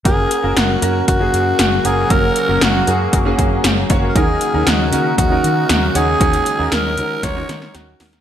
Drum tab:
HH |x-x-x-x-x-x-x-x-|x-x-x-x-x-x-x-x-|x-x-x-x-x-x-x-x-|xxx-x-x-x-x-x-ox|
SD |----o-------o---|----o-------o---|----o-------o---|----o---o-ooo-oo|
BD |o-------o-------|o-------o-o---o-|o-------o-------|o-------o-------|